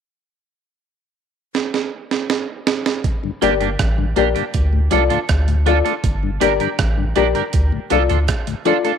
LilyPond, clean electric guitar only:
\new Staff \with { instrumentName = "Clean electric guitar" } { \time 4/4 \key g \minor \tempo 4 = 80 r1 | r8 <bes d' g'>16 <bes d' g'>16 r8 <bes d' g'>16 <bes d' g'>16 r8 <d' f' a'>16 <d' f' a'>16 r8 <d' f' a'>16 <d' f' a'>16 | r8 <d' g' bes'>16 <d' g' bes'>16 r8 <d' g' bes'>16 <d' g' bes'>16 r8 <d' f' a'>16 <d' f' a'>16 r8 <d' f' a'>16 <d' f' a'>16 | }